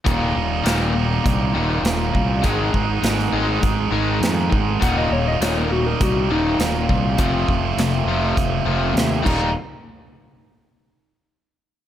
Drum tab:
CC |----------------|----------------|----------------|--------------x-|
HH |x---x---x---x---|x---x---x---x---|x---x---x---x---|x---x---x---x---|
SD |----o-------o---|----oo------o---|----o-------o---|----o-------o---|
BD |o-------o-----o-|o-o-----o-----o-|o-------o-----o-|o-o-----o-----o-|

CC |----------------|
HH |----------------|
SD |----------------|
BD |----------------|